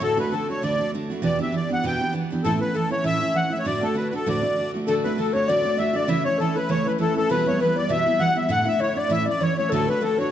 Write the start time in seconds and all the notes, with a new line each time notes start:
0.00 D2 A2 D3 A3 D4 F#4 A4
0.17 D3 A3 D4 F#4 B4
0.32 D3 A3 D4 F#4 A4
0.49 D3 A3 D4 F#4 C#5
0.62 D2 A2 D3 A3 D4 F#4 D5
0.78 D3 A3 D4 F#4
0.94 D3 A3 D4 F#4
1.10 D3 A3 D4 F#4
1.22 E2 B2 E3 B3 D4 G4 D5
1.39 E3 B3 D4 G4 E5
1.52 E3 B3 D4 G4
1.56 D5
1.69 E3 B3 D4 G4
1.73 F#5
1.83 E2 B2 E3 B3 D4 G4 G5
1.99 E3 B3 D4 G4
2.13 E3 B3 D4 G4
2.30 E3 B3 D4 G4
2.44 A2 E3 A3 C#4 E4 A4
2.60 A3 C#4 E4 B4
2.74 E3 A3 C#4 E4 A4
2.90 A3 C#4 E4 C#5
3.04 A2 E3 A3 C#4 E4 E5
3.20 A3 C#4 E4
3.33 E3 A3 C#4 E4 F#5
3.50 A3 C#4 E4 E5
3.59 C#5
3.65 D2 A2 D3 A3 D4 F#4 D5
3.81 D3 A3 D4 F#4 A4
3.94 D3 A3 D4 F#4 B4
4.10 A3 D4 F#4 B4
4.15 D3 A4
4.26 D2 A2 D3 A3 D4 F#4 D5
4.41 D3 A3 D4 F#4
4.57 D3 A3 D4 F#4
4.74 D3 A3 D4 F#4
4.87 D2 A2 D3 A3 D4 F#4 A4
5.04 D3 A3 D4 F#4 B4
5.17 D3 A3 D4 F#4 A4
5.33 D3 A3 D4 F#4 C#5
5.48 D2 A2 D3 A3 D4 F#4 D5
5.63 D3 A3 D4 F#4
5.77 D3 A3 D4 F#4 E5
5.93 D3 A3 D4 F#4 D5
6.08 C#3 E3 A3 C#4 E4 E5
6.25 A3 C#4 E4 C#5
6.38 E3 A3 C#4 E4 A4
6.56 A3 C#4 E4 B4
6.69 C#3 E3 A3 C#4 E4 C#5
6.85 A3 C#4 E4 B4
6.98 E3 A3 C#4 E4 A4
7.15 A3 C#4 E4 A4
7.30 B2 E3 G3 B3 E4 B4
7.46 G3 B3 E4 C#5
7.60 E3 G3 B3 E4 B4
7.76 G3 B3 E4 D5
7.89 B2 E3 G3 B3 E4 E5
8.06 G3 B3 E4
8.19 E3 G3 B3 E4 F#5
8.35 G3 B3 E4 E5
8.49 A2 D3 A3 D4 E4 F#5
8.65 A3 D4 E4 E5
8.79 D3 A3 D4 E4 C#5
8.95 A3 D4 E4 D5
9.09 A2 E3 A3 C#4 E4 E5
9.25 A3 C#4 E4 D5
9.30 D5
9.40 E3 A3 C#4 E4 C#5
9.56 A3 C#4 E4 C#5
9.69 D2 A2 D3 A3 D4 F#4 A4
9.87 D3 A3 D4 F#4 B4
10.01 D3 A3 D4 F#4 A4
10.18 D3 A3 D4 F#4 C#5